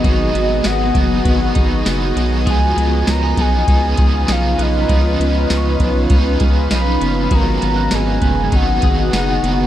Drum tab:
RD |xxxxxxxx|xxxxxxxx|xxxxxxxx|xxxxxxxx|
TB |--x---x-|--x---x-|--x---x-|--x---x-|
SD |--o---o-|--o---o-|--o---o-|--o---o-|
BD |o--ooo--|o--ooo--|o--ooo--|o--ooo--|